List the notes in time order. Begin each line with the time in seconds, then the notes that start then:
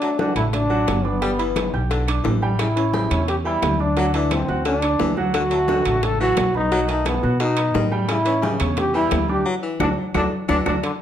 Already playing: D4
0.01 F#3 A3 A4 A5, high conga, high timbale
0.19 D3 D4 F#4 F#5 F#6, high bongo, high conga, low timbale
0.36 A1 A3 E4 A4 A5, high conga, low conga, high timbale, claves
0.53 D4, high bongo, high conga, low conga, high timbale
0.69 F#3 F#4 F#5, high conga
0.87 G1, high bongo, low bongo, high conga, high timbale, low timbale, claves
1.04 B3 D4 D5 D6, high conga
1.21 G3 G4 G5, high bongo, high conga, high timbale
1.39 E3 B3 B4 B5, high conga, high timbale
1.56 high bongo, high conga, high timbale, low timbale, claves
1.74 B1 G4 G5 G6, high bongo, high conga
1.90 D3, high bongo, high conga, high timbale
2.08 D4 D5 D6, high bongo, high conga, high timbale, claves
2.24 A1 E3, high bongo, low bongo, high conga, low timbale
2.42 G3 G4 G5, high bongo, high conga
2.59 C#3 E4, high bongo, high conga, high timbale, claves
2.76 E3 C#4 C#5 C#6, high timbale
2.93 C#3 G4 G5 G6, high bongo, high conga, low timbale
3.10 E2 C#4 C#5 C#6, high conga, low conga, high timbale, claves
3.28 G4, high bongo, high conga, high timbale
3.45 E3 G3 E4 G4 G5, high conga
3.62 D2, high bongo, low bongo, high conga, high timbale, low timbale, claves
3.80 D4 D5 D6, high conga
3.97 F#3 F#4 F#5, high bongo, high conga, high timbale
4.14 E3 A3 D4 A4 A5, high timbale
4.31 C4, high bongo, high conga, high timbale, low timbale, claves
4.48 D2 F#4 F#5 F#6, high bongo, high conga
4.65 D3 D4, high bongo, high conga, high timbale
4.82 D4 D5 D6, high bongo, high conga, high timbale, claves
4.99 D2 E3, high bongo, low bongo, high conga, low timbale
5.17 F#3 F#4 F#5, high bongo, high conga
5.34 D3 F#4, high bongo, high conga, high timbale, claves
5.51 F#3 A3 A4 A5, high conga, high timbale
5.68 D3 F#4 F#5 F#6, high bongo, high conga, low timbale
5.85 A1 A3 A4 A5, high conga, low conga, high timbale, claves
6.03 A4, high bongo, high conga, low conga, high timbale
6.20 E3 F#3 F#4 F#5, high conga
6.37 B1, high bongo, low bongo, high conga, high timbale, low timbale, claves
6.55 B3 D#4 B4 B5, high conga
6.71 F#3 F#4 F#5, high bongo, high timbale
6.88 D#3 A3 D#4 A4 A5, high conga, high timbale
7.06 B3, high bongo, high conga, high timbale, low timbale, claves
7.23 B2 F#4 F#5 F#6, high bongo, high conga
7.40 B2 D#4, high bongo, high conga, high timbale
7.57 B3 B4 B5, high bongo, high conga, high timbale, claves
7.74 A2 D#3, high bongo, low bongo, high conga, low timbale
7.92 G3 G4 G5, high bongo, high conga
8.08 C#3 E4, high bongo, high conga, high timbale, claves
8.25 E3 C#4 C#5 C#6, high conga, high timbale
8.42 C#3 G4 G5 G6, high bongo, high conga, low timbale
8.60 E2 C#4 C#5 C#6, high conga, low conga, high timbale, claves
8.77 G4, high bongo, high conga, low conga, high timbale
8.94 E3 G3 E4 G4 G5, high conga
9.11 D2, high bongo, low bongo, high conga, high timbale, low timbale, claves
9.29 D4 G4 D5 D6, high conga
9.45 F#3
9.63 E3
9.80 D2 D4 F#4 A4 D5, low bongo, high conga, high timbale, claves
10.14 D2 D3 D4 F#4 A4 D5, low bongo, high conga, high timbale, claves
10.48 D2 E3 D4 F#4 A4 D5, low bongo, high conga, high timbale, claves
10.66 D2 D4 F#4 A4 D5, low bongo, high conga, high timbale, claves
10.83 D3, high bongo, high conga, high timbale, claves